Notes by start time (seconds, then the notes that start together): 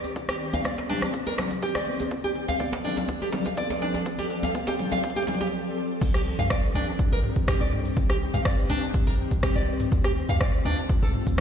Already playing: D#3 C4 G4 D5
0.04 djembe tone, cabasa
0.16 kick, mid tom, muted conga, cabasa
0.29 G4, cross-stick, djembe tone, cabasa
0.53 F5, mid tom, muted conga, djembe tone, djembe bass, cabasa
0.64 D5, kick, cross-stick, high conga, cabasa
0.77 djembe slap, djembe tone, cabasa
0.89 D4, mid tom, low conga
1.01 cross-stick, djembe slap, muted conga, high conga, djembe tone, cabasa
1.14 kick, mid tom, cabasa
1.27 A#4, djembe tone, cabasa
1.38 cross-stick, djembe slap, muted conga, low conga
1.51 kick, mid tom, djembe tone, cabasa
1.62 G4, kick, cabasa
1.75 D5, cross-stick, djembe slap, muted conga, djembe tone, cabasa
1.87 mid tom, high conga
1.99 mid tom, djembe tone, cabasa
2.11 F3 A4, kick, mid tom, muted conga, cabasa
2.24 G4, djembe tone, cabasa
2.35 mid tom
2.48 F5, mid tom, muted conga, djembe tone, djembe bass, cabasa
2.59 D5, kick, mid tom, high conga, cabasa
2.72 djembe slap, djembe tone, cabasa
2.84 D4, mid tom, low conga
2.97 djembe slap, muted conga, djembe tone, cabasa
3.08 kick, mid tom, djembe bass, cabasa
3.21 G4, djembe tone, cabasa
3.32 mid tom, djembe slap, muted conga, low conga
3.45 F5, kick, djembe tone, cabasa
3.57 D5, kick, mid tom, high conga, cabasa
3.69 djembe slap, muted conga, djembe tone, cabasa
3.82 D4, mid tom
3.94 djembe tone, cabasa
4.06 kick, mid tom, muted conga, cabasa
4.18 G4, mid tom, djembe tone, cabasa
4.30 mid tom
4.43 F5, mid tom, muted conga, djembe tone, djembe bass, cabasa
4.55 kick, mid tom, high conga, cabasa
4.67 G4, mid tom, djembe slap, djembe tone, cabasa
4.79 mid tom, low conga
4.91 F5, mid tom, djembe slap, muted conga, djembe tone, high conga, cabasa
5.04 kick, mid tom, cabasa
5.10 mid tom
5.16 G4, mid tom, djembe tone, cabasa
5.23 mid tom
5.27 mid tom, djembe slap, muted conga, low conga
5.35 mid tom
5.40 G4, kick, mid tom, djembe tone, cabasa
5.47 mid tom
6.01 C2 D#3 C4 D4 G4, kick, crash, cabasa
6.14 G4, cross-stick, cabasa
6.38 C2 F5, mid tom, cabasa
6.50 D5, kick, cross-stick, cabasa
6.63 cabasa
6.75 C2 D4
6.87 cabasa
6.99 kick, cabasa
7.12 A#1 A#4, cabasa
7.24 mid tom
7.35 C2, kick, cabasa
7.48 G4, kick, cross-stick, cabasa
7.61 C2 D5, cabasa
7.72 mid tom
7.85 cabasa
7.96 C2, kick, cabasa
8.09 G4, cross-stick, cabasa
8.34 C2 F5, mid tom, cabasa
8.45 D5, kick, cross-stick, cabasa
8.59 cabasa
8.70 C2 D4
8.83 cabasa
8.94 kick, mid tom, cabasa
9.07 A#1 A#4, cabasa
9.31 C2, kick, cabasa
9.43 G4, kick, cross-stick, cabasa
9.55 C2 D5, cabasa
9.79 mid tom, cabasa
9.92 D2 D3 A3 F4, kick, cabasa
10.04 G4, cross-stick, cabasa
10.29 D2 F5, mid tom, cabasa
10.41 D5, kick, cross-stick, cabasa
10.53 cabasa
10.65 D2 D4
10.78 cabasa
10.90 kick, cabasa
11.02 C2 A4, cabasa
11.14 mid tom
11.27 D2, kick, cabasa